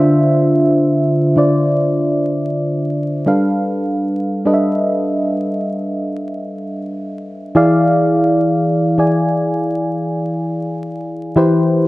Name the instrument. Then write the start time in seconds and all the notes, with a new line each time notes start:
fm electric piano
Already playing: D3 D4 F4 C5 E5
1.36 D3 D4 F4 C5 D5
3.26 G3 D4 A4 B4 F5
4.45 G3 D4 A4 B4 D#5
4.54 E5
7.55 E3 E4 G#4 D5 F5
8.98 E3 E4 G#4 D5 G#5
11.36 E3 E4 G4 B4 C5